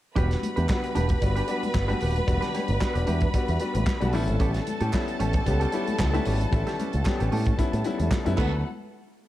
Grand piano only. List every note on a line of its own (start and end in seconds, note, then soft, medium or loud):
0.16 0.50 G3 medium
0.16 0.50 B3 medium
0.16 0.50 D4 medium
0.16 0.50 F#4 medium
0.69 1.02 G3 medium
0.69 1.03 B3 medium
0.69 1.03 D4 medium
0.69 1.03 F#4 medium
1.21 1.39 G3 medium
1.21 1.39 B3 medium
1.21 1.39 D4 medium
1.21 1.40 F#4 medium
1.47 1.73 G3 medium
1.47 1.73 B3 medium
1.47 1.73 D4 medium
1.47 1.74 F#4 medium
1.88 2.13 G3 medium
1.88 2.13 B3 medium
1.88 2.14 D4 medium
1.88 2.14 F#4 loud
2.27 2.61 G3 medium
2.27 2.61 B3 medium
2.27 2.62 D4 medium
2.27 2.62 F#4 medium
2.80 3.14 G3 medium
2.80 3.14 B3 medium
2.80 3.15 D4 medium
2.80 3.15 F#4 medium
3.34 3.51 G3 medium
3.34 3.51 B3 medium
3.34 3.52 D4 medium
3.34 3.52 F#4 medium
3.60 3.85 G3 medium
3.60 3.85 B3 medium
3.60 3.86 D4 medium
3.60 3.86 F#4 medium
4.00 4.11 G3 medium
4.00 4.12 B3 medium
4.00 4.14 D4 medium
4.00 4.14 F#4 medium
4.13 4.78 G3 medium
4.13 4.78 B3 medium
4.13 4.78 C#4 medium
4.13 4.78 E4 loud
4.92 5.26 G3 medium
4.92 5.27 B3 medium
4.92 5.27 C#4 medium
4.92 5.27 E4 medium
5.46 5.63 G3 medium
5.46 5.64 B3 medium
5.46 5.64 C#4 medium
5.46 5.64 G4 medium
5.72 5.98 G3 medium
5.72 5.98 B3 medium
5.72 5.98 C#4 medium
5.72 5.98 E4 medium
6.13 6.38 G3 medium
6.13 6.38 B3 medium
6.13 6.38 C#4 medium
6.13 6.39 E4 loud
6.52 6.86 G3 medium
6.52 6.86 B3 medium
6.52 6.86 C#4 medium
6.52 6.86 E4 medium
7.05 7.39 G3 medium
7.05 7.39 B3 medium
7.05 7.39 C#4 medium
7.05 7.39 G4 medium
7.57 7.75 G3 medium
7.57 7.75 B3 medium
7.57 7.76 C#4 medium
7.57 7.76 E4 medium
7.84 8.10 G3 medium
7.84 8.10 B3 medium
7.84 8.10 C#4 medium
7.84 8.10 E4 medium
8.25 8.38 G3 medium
8.25 8.37 B3 medium
8.25 8.38 C#4 medium
8.25 8.37 E4 loud
8.38 8.63 F#3 medium
8.38 8.63 A3 medium
8.38 8.63 B3 medium
8.38 8.63 E4 medium